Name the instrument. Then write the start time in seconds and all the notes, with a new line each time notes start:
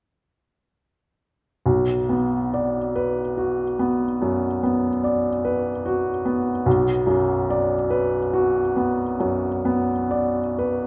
grand piano
1.66 B1
2.09 B3
2.54 D5
2.96 B4
3.37 F#4
3.79 B3
4.22 F#2
4.63 B3
5.04 D5
5.45 B4
5.86 F#4
6.25 B3
6.66 B1
7.07 F#2
7.50 D5
7.90 B4
8.34 F#4
8.76 B3
9.20 F#2
9.65 B3
10.11 D5
10.59 B4